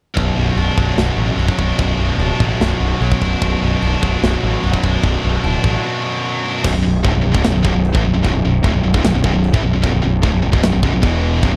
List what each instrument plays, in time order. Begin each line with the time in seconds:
0.16 picked electric bass B0, distorted electric guitar B1, kick, china
0.36 picked electric bass B0, distorted electric guitar B2
0.56 picked electric bass B0, distorted electric guitar D4, china
0.77 picked electric bass B0, distorted electric guitar F#3, kick
0.96 picked electric bass B0, distorted electric guitar F#2 B2, snare, china
1.16 picked electric bass A1, distorted electric guitar F#2 B2
1.37 picked electric bass B0, distorted electric guitar F#3, china
1.48 kick
1.58 picked electric bass B0, distorted electric guitar B2 D4, kick
1.78 picked electric bass B0, distorted electric guitar B1, kick, china
1.97 picked electric bass B0, distorted electric guitar B2
2.18 picked electric bass D1, distorted electric guitar D4, china
2.40 picked electric bass A1, distorted electric guitar F#3, kick
2.59 picked electric bass B0, distorted electric guitar F#2 B2, snare, china
2.79 picked electric bass B0, distorted electric guitar F#2 B2
3.01 picked electric bass B1, distorted electric guitar F#3, china
3.12 kick
3.21 picked electric bass B0, distorted electric guitar B2 D4, kick
3.41 picked electric bass B0, distorted electric guitar B1, kick, china
3.62 picked electric bass B0, distorted electric guitar B2
3.82 picked electric bass B0, distorted electric guitar D4, china
4.02 picked electric bass B0, distorted electric guitar F#3, kick
4.22 picked electric bass B0, distorted electric guitar F#2 B2, snare, china
4.42 picked electric bass A1, distorted electric guitar F#2 B2
4.63 picked electric bass B0, distorted electric guitar F#3, china
4.73 kick
4.83 picked electric bass B0, distorted electric guitar B2 D4, kick
5.03 picked electric bass B0, distorted electric guitar B1, kick, china
5.24 picked electric bass B0, distorted electric guitar B2
5.43 picked electric bass D1, distorted electric guitar D4, china
5.64 picked electric bass A1, distorted electric guitar F#3, kick
5.84 distorted electric guitar F#2 B2
6.04 distorted electric guitar F#2 B2
6.24 distorted electric guitar F#3
6.43 distorted electric guitar B2 D4
6.64 picked electric bass B0, distorted electric guitar B1 F#2, kick, crash, china
6.75 picked electric bass B0, distorted electric guitar B1 F#2
6.84 picked electric bass B0, distorted electric guitar B1 F#2
7.04 picked electric bass D1, distorted electric guitar D2 A2, kick, china
7.15 picked electric bass B0, distorted electric guitar B1 F#2
7.21 picked electric bass B0, distorted electric guitar B1 F#2
7.26 distorted electric guitar B1 F#2
7.34 picked electric bass C#1, distorted electric guitar C#2 G#2, kick
7.44 picked electric bass B0, distorted electric guitar B1 F#2, snare, china
7.55 picked electric bass B0, distorted electric guitar B1 F#2
7.64 picked electric bass B0, distorted electric guitar B1 F#2, kick
7.75 picked electric bass B0, distorted electric guitar B1 F#2
7.85 china
7.95 picked electric bass A1, distorted electric guitar A2 E3, kick
8.05 picked electric bass B0, distorted electric guitar B1 F#2
8.14 picked electric bass B0, distorted electric guitar B1 F#2
8.24 picked electric bass B0, distorted electric guitar B1 F#2, kick, china
8.35 picked electric bass B0, distorted electric guitar B1 F#2
8.43 picked electric bass B0, distorted electric guitar B1 F#2
8.63 picked electric bass D1, distorted electric guitar D2 A2, kick, china
8.74 picked electric bass B0, distorted electric guitar B1 F#2
8.83 picked electric bass B0, distorted electric guitar B1 F#2
8.93 picked electric bass C#1, distorted electric guitar C#2 G#2, kick
9.03 picked electric bass B0, distorted electric guitar B1 F#2, snare, china
9.13 picked electric bass B0, distorted electric guitar B1 F#2
9.23 picked electric bass B0, distorted electric guitar B1 F#2, kick
9.33 picked electric bass B0, distorted electric guitar B1 F#2
9.44 china
9.53 picked electric bass A1, distorted electric guitar A2 E3, kick
9.63 picked electric bass B0, distorted electric guitar B1 F#2
9.73 picked electric bass B0, distorted electric guitar B1 F#2
9.83 picked electric bass B0, distorted electric guitar B1 F#2, kick, china
9.94 picked electric bass B0, distorted electric guitar B1 F#2
10.03 picked electric bass B0, distorted electric guitar B1 F#2
10.23 picked electric bass D1, distorted electric guitar D2 A2, kick, china
10.33 picked electric bass B0, distorted electric guitar B1 F#2
10.43 picked electric bass B0, distorted electric guitar B1 F#2
10.53 picked electric bass C#1, distorted electric guitar C#2 G#2, kick
10.62 picked electric bass B0, distorted electric guitar B1 F#2, snare, china
10.73 picked electric bass B0, distorted electric guitar B1 F#2
10.83 picked electric bass B0, distorted electric guitar B1 F#2, kick
10.94 picked electric bass B0, distorted electric guitar B1 F#2
11.03 picked electric bass E1, distorted electric guitar E2 B2 E3, kick, china
11.43 picked electric bass B0, distorted electric guitar B1 F#2, kick, china
11.53 distorted electric guitar B1 F#2